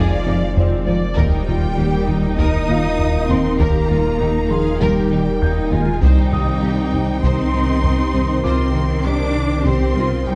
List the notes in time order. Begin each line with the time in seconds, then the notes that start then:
Already playing: F1 F2 D#3 F3 G#3 F4 G#4 C5 D5 F5
0.25 F2 F3 C4 D#4
0.56 F2 C4 F4 D5, taiko low
0.87 F2 F3 C4 D#4 D5, taiko low
1.16 D#1 D#2 D#3 G3 A#3 D#4 A#4 G5, taiko
1.47 D#2 G3 D#4 F4, taiko low
1.78 D#2 D#3 A#3 G4
2.08 D#3 D#4, taiko low
2.38 D#2 D#3 D#4 A#4 D#6, taiko
2.69 D#2 D#3 A#3 D#4 F4 F5
2.99 D#2, taiko low
3.29 D#2 D#3 A#3 C4 D#4 C6, taiko low
3.59 D#2 D#3 A#3 G4 A#4 A#5, taiko
3.89 D#2 G3 D#4 F4, taiko low
4.20 D#2 D#3 A#3 D#4 G4
4.50 D#3 F3 G#4 F5 C6, taiko low
4.80 D#2 D#3 G3 G4 A#4 G5, taiko
5.10 D#2 D#3 A#3 D#4
5.41 D#2 D#4 G6, taiko low
5.71 D#2 D#3 G#3 A#3 D#4 F4 G#5, taiko low
6.01 C2 C3 D#3 G3 C4 D#4 G4 C5 G5, taiko
6.32 C2 D#3 D#4 D#6, taiko low
6.62 C2 C3 G3 G4
6.93 C3, taiko low
7.23 C2 C3 C4 D#4 C5 C6, taiko
7.53 C2 C3 G3 D#4
7.83 C2, taiko low
8.14 C2 C3 G3 D#4, taiko low
8.44 C2 C3 C4 F4 C5 C6 D6, taiko
8.74 C2 D#3 D#4
9.05 C2 C3 G3 D4 G4 D6
9.35 C3
9.65 C2 C3 C4 G4 C5 C6, taiko
9.96 C2 C3 G3 D#4 F4
10.26 C2 G3 D#4 G5